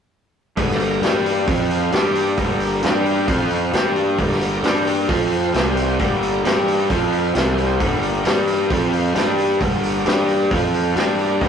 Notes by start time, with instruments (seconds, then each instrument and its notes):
0.57 fingered electric bass G1, overdriven electric guitar G2 D3 G3, tonewheel organ B3 D#4 G#4 B4, kick, open hi-hat
0.71 tonewheel organ A#3 D4 A#4, snare
0.75 tonewheel organ G4
0.80 open hi-hat
1.02 fingered electric bass G2, overdriven electric guitar G3 D4 G4, snare, open hi-hat
1.26 open hi-hat
1.47 fingered electric bass F2, overdriven electric guitar F3 C4 F4, tonewheel organ F3 C4 F4 C5, kick, open hi-hat
1.71 open hi-hat
1.92 fingered electric bass G2, overdriven electric guitar G3 D4 G4, tonewheel organ A#3 D4 G4 A#4, snare, open hi-hat
2.15 open hi-hat
2.38 fingered electric bass G1, overdriven electric guitar G2 D3 G3, kick, open hi-hat
2.60 open hi-hat
2.83 fingered electric bass G2, overdriven electric guitar G3 D4 G4, snare, open hi-hat
3.06 open hi-hat
3.28 fingered electric bass F2, overdriven electric guitar F3 C4 F4, tonewheel organ F3 C4 F4 C5, kick, open hi-hat
3.51 open hi-hat
3.73 fingered electric bass G2, overdriven electric guitar G3 D4 G4, tonewheel organ B3 D#4 G#4 B4, snare, open hi-hat
3.88 tonewheel organ A#3 D4 G4 A#4
3.96 open hi-hat
4.18 fingered electric bass G1, overdriven electric guitar G2 D3 G3, kick, open hi-hat
4.32 snare
4.41 open hi-hat
4.63 fingered electric bass G2, overdriven electric guitar G3 D4 G4, snare, open hi-hat
4.87 open hi-hat
5.07 fingered electric bass F2, tonewheel organ F3 C4 F4 C5, overdriven electric guitar F3 C4 F4, kick, open hi-hat
5.31 open hi-hat
5.52 fingered electric bass C2, overdriven electric guitar C3 G3 C4, tonewheel organ G3 C4 G4 C5, snare, open hi-hat
5.77 open hi-hat
5.99 fingered electric bass G1, overdriven electric guitar G2 D3 G3, tonewheel organ A#3 D4 G4 A#4, kick, open hi-hat
6.23 open hi-hat
6.45 fingered electric bass G2, overdriven electric guitar G3 D4 G4, snare, open hi-hat
6.68 open hi-hat
6.89 fingered electric bass F2, overdriven electric guitar F3 C4 F4, tonewheel organ F3 C4 F4 C5, kick, open hi-hat
7.13 open hi-hat
7.35 fingered electric bass C2, overdriven electric guitar C3 G3 C4, tonewheel organ G3 C4 G4 C5, snare, open hi-hat
7.58 open hi-hat
7.80 fingered electric bass G1, overdriven electric guitar G2 D3 G3, tonewheel organ B3 D#4 G#4 B4, kick, open hi-hat
7.96 tonewheel organ A#3 D4 G4 A#4
8.03 open hi-hat
8.25 fingered electric bass G2, overdriven electric guitar G3 D4 G4, snare, open hi-hat
8.47 open hi-hat
8.70 fingered electric bass F2, overdriven electric guitar F3 C4 F4, tonewheel organ F3 C4 F4 C5, kick, open hi-hat
8.93 open hi-hat
9.15 fingered electric bass G2, overdriven electric guitar G3 D4 G4, tonewheel organ A#3 D4 G4 A#4, snare, open hi-hat
9.38 open hi-hat
9.60 fingered electric bass G1, overdriven electric guitar G2 D3 G3, kick, open hi-hat
9.83 open hi-hat
10.06 fingered electric bass G2, overdriven electric guitar G3 D4 G4, snare, open hi-hat
10.29 open hi-hat
10.51 fingered electric bass F2, overdriven electric guitar F3 C4 F4, tonewheel organ F3 C4 F4 C5, kick, open hi-hat
10.74 open hi-hat
10.95 fingered electric bass G2, overdriven electric guitar G3 D4 G4, tonewheel organ A#3 D4 G4 A#4, snare, open hi-hat
11.19 open hi-hat
11.41 fingered electric bass G1, overdriven electric guitar G2 D3 G3, kick, open hi-hat